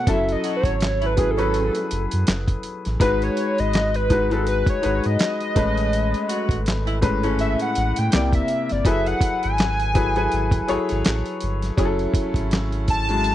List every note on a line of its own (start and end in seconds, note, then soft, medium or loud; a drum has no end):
0.07 0.36 F#1 medium
0.07 1.04 F#3 medium
0.07 1.04 C#4 medium
0.07 1.05 E4 medium
0.07 1.05 A4 loud
0.07 0.32 E5 loud
0.07 kick loud
0.07 closed hi-hat medium
0.29 0.55 D#5 medium
0.29 closed hi-hat soft
0.44 0.73 F#3 medium
0.44 0.73 F#4 medium
0.44 closed hi-hat medium
0.56 1.08 C#5 medium
0.64 1.70 G#1 medium
0.64 kick medium
0.64 closed hi-hat soft
0.81 snare medium
0.81 clap medium
0.81 closed hi-hat medium
1.01 1.14 E3 soft
1.01 1.14 E4 medium
1.01 closed hi-hat soft
1.06 1.32 B4 medium
1.16 1.35 F#3 medium
1.16 1.35 C#4 medium
1.16 1.35 E4 medium
1.16 1.36 G#4 medium
1.16 kick medium
1.16 closed hi-hat medium
1.31 2.03 A4 medium
1.37 1.87 C#3 medium
1.37 2.61 F#3 medium
1.37 2.62 C#4 medium
1.37 1.87 C#4 medium
1.37 2.62 E4 medium
1.37 2.62 B4 medium
1.37 closed hi-hat soft
1.54 closed hi-hat medium
1.75 closed hi-hat medium
1.91 2.08 F#1 medium
1.91 closed hi-hat medium
2.11 2.25 F#2 medium
2.11 closed hi-hat medium
2.27 2.57 F#1 loud
2.27 snare loud
2.27 clap medium
2.27 closed hi-hat medium
2.48 kick medium
2.48 closed hi-hat soft
2.63 closed hi-hat medium
2.85 2.98 A1 medium
2.85 snare soft
2.85 closed hi-hat soft
3.00 3.30 G#1 medium
3.00 3.97 G#3 medium
3.00 3.97 D#4 medium
3.00 3.97 F#4 medium
3.00 3.98 B4 loud
3.00 3.25 B4 loud
3.00 kick loud
3.00 closed hi-hat medium
3.22 3.61 C#5 medium
3.22 closed hi-hat soft
3.37 closed hi-hat medium
3.58 4.64 G#1 medium
3.58 3.97 D#5 loud
3.58 closed hi-hat soft
3.73 snare medium
3.73 clap medium
3.73 closed hi-hat medium
3.94 4.34 B4 loud
3.94 closed hi-hat soft
4.10 4.28 G#3 medium
4.10 4.28 D#4 medium
4.10 4.28 F#4 medium
4.10 4.29 B4 medium
4.10 kick medium
4.10 closed hi-hat medium
4.30 4.76 G#3 medium
4.30 4.76 D#4 medium
4.30 4.77 F#4 medium
4.30 4.47 A4 medium
4.30 4.77 B4 medium
4.30 closed hi-hat soft
4.47 4.67 B4 loud
4.47 closed hi-hat medium
4.66 5.07 C#5 medium
4.66 kick medium
4.66 closed hi-hat soft
4.82 5.01 G#1 medium
4.82 5.54 G#3 medium
4.82 5.56 D#4 medium
4.82 5.56 F#4 medium
4.82 5.55 B4 medium
4.82 closed hi-hat medium
5.04 5.17 G#2 medium
5.04 6.88 D#5 loud
5.04 closed hi-hat soft
5.19 snare loud
5.19 clap medium
5.19 closed hi-hat medium
5.41 closed hi-hat soft
5.55 6.14 A1 medium
5.55 6.85 G#3 medium
5.55 6.85 A3 medium
5.55 6.85 C#4 medium
5.55 6.85 B4 medium
5.55 kick loud
5.55 closed hi-hat medium
5.77 snare soft
5.77 closed hi-hat soft
5.93 closed hi-hat medium
6.14 closed hi-hat soft
6.29 6.58 F#3 medium
6.29 6.58 F#4 medium
6.29 closed hi-hat medium
6.49 7.56 G#1 medium
6.49 kick medium
6.49 closed hi-hat soft
6.66 snare medium
6.66 clap medium
6.66 closed hi-hat medium
6.86 6.99 E3 medium
6.86 6.99 E4 medium
6.86 closed hi-hat soft
7.01 7.20 A2 medium
7.01 7.20 G#3 medium
7.01 7.20 C#4 medium
7.01 7.21 B4 medium
7.01 kick medium
7.01 closed hi-hat medium
7.23 7.72 C#3 medium
7.23 8.12 G#3 medium
7.23 8.12 A3 medium
7.23 7.72 C#4 medium
7.23 8.12 C#4 medium
7.23 8.13 B4 medium
7.23 closed hi-hat soft
7.39 7.59 E5 medium
7.39 closed hi-hat medium
7.59 8.00 F#5 medium
7.59 closed hi-hat medium
7.75 7.93 A1 loud
7.75 closed hi-hat medium
7.96 8.10 A2 medium
7.96 8.34 G5 medium
7.96 closed hi-hat medium
8.12 8.42 C2 loud
8.12 8.77 C3 medium
8.12 8.77 A#3 medium
8.12 8.77 E4 medium
8.12 8.78 D5 medium
8.12 snare loud
8.12 clap medium
8.12 closed hi-hat medium
8.33 8.73 E5 medium
8.33 kick medium
8.33 closed hi-hat soft
8.48 closed hi-hat medium
8.69 8.83 G1 loud
8.69 8.88 D5 medium
8.69 snare soft
8.69 closed hi-hat soft
8.85 9.14 F#1 medium
8.85 9.82 F#3 medium
8.85 9.82 E4 medium
8.85 9.83 G#4 medium
8.85 9.83 A4 medium
8.85 9.83 B4 medium
8.85 9.09 E5 loud
8.85 kick loud
8.85 closed hi-hat medium
9.06 9.43 F#5 loud
9.06 closed hi-hat soft
9.21 kick medium
9.21 closed hi-hat medium
9.43 10.28 G#1 medium
9.43 11.22 G#5 loud
9.43 closed hi-hat soft
9.58 snare loud
9.58 clap medium
9.58 closed hi-hat medium
9.80 closed hi-hat soft
9.94 10.13 F#3 medium
9.94 10.13 E4 medium
9.94 10.13 G#4 medium
9.94 10.13 A4 medium
9.94 10.14 B4 medium
9.94 kick loud
9.94 closed hi-hat medium
10.15 10.61 F#3 medium
10.15 10.62 E4 medium
10.15 10.62 G#4 medium
10.15 10.62 A4 medium
10.15 10.62 B4 medium
10.15 closed hi-hat soft
10.32 10.61 G#1 loud
10.32 closed hi-hat medium
10.51 kick loud
10.51 closed hi-hat soft
10.68 10.78 G#1 soft
10.68 11.65 F#3 medium
10.68 11.65 E4 medium
10.68 11.65 G#4 medium
10.68 11.66 A4 medium
10.68 11.66 C#5 loud
10.68 closed hi-hat medium
10.89 11.03 G#1 medium
10.89 snare soft
10.89 closed hi-hat medium
11.05 11.23 A1 medium
11.05 snare loud
11.05 clap loud
11.05 closed hi-hat medium
11.26 closed hi-hat soft
11.41 11.71 G1 loud
11.41 closed hi-hat medium
11.62 snare soft
11.62 closed hi-hat soft
11.77 12.07 F#1 medium
11.77 13.35 C#3 medium
11.77 12.88 F#3 loud
11.77 13.35 A3 medium
11.77 12.88 C#4 medium
11.77 13.35 E4 medium
11.77 12.89 E4 medium
11.77 11.86 G#4 medium
11.77 kick loud
11.77 closed hi-hat medium
11.85 12.92 A4 loud
11.99 closed hi-hat soft
12.14 kick medium
12.14 closed hi-hat medium
12.34 13.35 G#1 medium
12.34 kick medium
12.34 closed hi-hat soft
12.51 snare medium
12.51 clap medium
12.51 closed hi-hat medium
12.72 closed hi-hat soft
12.88 13.35 A5 loud
12.88 kick medium
12.88 closed hi-hat medium
13.09 13.35 F#3 medium
13.09 13.35 G#3 medium
13.09 13.35 C#4 medium
13.09 13.35 E4 medium
13.09 closed hi-hat soft
13.24 closed hi-hat medium